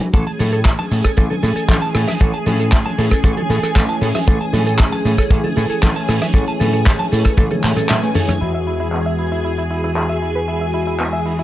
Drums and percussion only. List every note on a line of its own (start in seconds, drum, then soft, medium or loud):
0.01 closed hi-hat soft
0.01 high conga loud
0.14 kick loud
0.14 closed hi-hat medium
0.14 shaker soft
0.27 closed hi-hat medium
0.27 shaker soft
0.39 open hi-hat loud
0.39 high conga medium
0.39 shaker medium
0.53 closed hi-hat medium
0.53 shaker medium
0.53 shaker soft
0.65 kick loud
0.65 clap loud
0.65 closed hi-hat loud
0.65 shaker soft
0.65 shaker medium
0.78 closed hi-hat medium
0.78 high conga medium
0.78 shaker soft
0.91 open hi-hat loud
0.91 shaker medium
1.04 kick medium
1.04 cross-stick medium
1.04 closed hi-hat medium
1.04 shaker medium
1.04 shaker soft
1.17 kick loud
1.17 closed hi-hat medium
1.17 shaker soft
1.31 closed hi-hat soft
1.31 high conga medium
1.31 low conga medium
1.42 open hi-hat medium
1.42 shaker medium
1.56 closed hi-hat soft
1.56 shaker soft
1.56 shaker medium
1.69 kick loud
1.69 clap loud
1.69 closed hi-hat loud
1.69 high conga medium
1.69 shaker soft
1.82 closed hi-hat medium
1.95 cross-stick medium
1.95 open hi-hat loud
1.95 shaker medium
2.08 cross-stick medium
2.08 high conga medium
2.08 shaker soft
2.08 shaker medium
2.20 kick loud
2.20 closed hi-hat medium
2.20 shaker soft
2.34 closed hi-hat medium
2.34 shaker soft
2.46 open hi-hat loud
2.46 high conga medium
2.46 shaker medium
2.60 closed hi-hat soft
2.60 shaker soft
2.60 shaker medium
2.72 kick loud
2.72 clap loud
2.72 closed hi-hat loud
2.72 shaker soft
2.85 closed hi-hat soft
2.85 high conga medium
2.85 shaker soft
2.98 open hi-hat loud
2.98 shaker medium
3.11 kick medium
3.11 cross-stick medium
3.11 closed hi-hat medium
3.11 shaker soft
3.11 shaker medium
3.24 kick loud
3.24 closed hi-hat medium
3.24 shaker soft
3.24 shaker medium
3.37 closed hi-hat medium
3.37 high conga medium
3.37 low conga medium
3.50 open hi-hat medium
3.50 shaker medium
3.63 cross-stick medium
3.63 closed hi-hat soft
3.63 shaker medium
3.63 shaker soft
3.76 kick loud
3.76 clap loud
3.76 closed hi-hat loud
3.76 high conga medium
3.76 shaker soft
3.90 closed hi-hat medium
4.01 open hi-hat loud
4.01 shaker medium
4.14 cross-stick medium
4.14 high conga medium
4.14 shaker soft
4.16 shaker medium
4.27 kick loud
4.27 closed hi-hat medium
4.27 shaker medium
4.27 shaker soft
4.40 closed hi-hat medium
4.40 shaker soft
4.53 open hi-hat loud
4.53 high conga medium
4.53 shaker medium
4.67 closed hi-hat medium
4.67 shaker soft
4.67 shaker medium
4.79 kick loud
4.79 clap loud
4.79 closed hi-hat loud
4.79 shaker medium
4.92 closed hi-hat medium
4.92 high conga medium
4.92 shaker soft
5.05 open hi-hat loud
5.05 shaker medium
5.05 shaker loud
5.18 kick medium
5.18 cross-stick medium
5.18 closed hi-hat medium
5.18 shaker soft
5.18 shaker medium
5.31 kick loud
5.31 closed hi-hat loud
5.31 shaker medium
5.31 shaker soft
5.44 closed hi-hat medium
5.44 high conga medium
5.44 low conga medium
5.56 open hi-hat medium
5.56 shaker medium
5.58 shaker medium
5.70 closed hi-hat medium
5.70 shaker soft
5.72 shaker medium
5.82 kick loud
5.82 clap loud
5.82 closed hi-hat loud
5.82 high conga medium
5.82 shaker medium
5.84 shaker soft
5.96 closed hi-hat medium
6.08 cross-stick medium
6.08 open hi-hat loud
6.08 shaker loud
6.08 shaker medium
6.21 cross-stick medium
6.21 high conga medium
6.21 shaker soft
6.21 shaker medium
6.34 kick loud
6.34 closed hi-hat loud
6.34 shaker medium
6.47 closed hi-hat medium
6.47 shaker soft
6.60 open hi-hat loud
6.60 high conga medium
6.60 low conga medium
6.60 shaker medium
6.60 shaker loud
6.73 closed hi-hat medium
6.73 shaker soft
6.75 shaker medium
6.86 kick loud
6.86 clap loud
6.86 closed hi-hat medium
6.86 shaker soft
6.99 closed hi-hat soft
6.99 high conga medium
6.99 shaker soft
7.12 open hi-hat loud
7.12 shaker medium
7.25 kick medium
7.25 cross-stick medium
7.25 shaker soft
7.25 shaker medium
7.37 kick loud
7.37 closed hi-hat loud
7.37 high tom medium
7.37 shaker medium
7.51 closed hi-hat soft
7.51 high tom medium
7.51 high conga medium
7.51 low conga medium
7.64 clap medium
7.64 open hi-hat loud
7.64 shaker medium
7.76 cross-stick medium
7.76 closed hi-hat medium
7.76 mid tom medium
7.76 shaker soft
7.78 shaker medium
7.89 clap loud
7.89 closed hi-hat loud
7.89 mid tom medium
7.89 high conga medium
7.89 shaker medium
8.03 closed hi-hat medium
8.03 shaker soft
8.15 mid tom loud
8.15 open hi-hat loud
8.15 shaker loud
8.15 shaker medium
8.28 cross-stick medium
8.28 closed hi-hat medium
8.28 mid tom medium
8.28 high conga loud
8.28 shaker medium
8.28 shaker soft
8.67 open hi-hat medium
8.67 shaker medium
8.81 shaker medium
8.92 clap loud
9.19 open hi-hat loud
9.19 shaker medium
9.70 open hi-hat loud
9.84 cross-stick medium
9.84 shaker soft
9.96 clap loud
10.23 open hi-hat medium
10.23 shaker medium
10.37 shaker soft
10.49 shaker soft
10.75 open hi-hat loud
10.75 shaker medium
10.88 shaker medium
10.99 clap loud
10.99 shaker soft
11.25 open hi-hat loud
11.25 shaker medium
11.39 shaker medium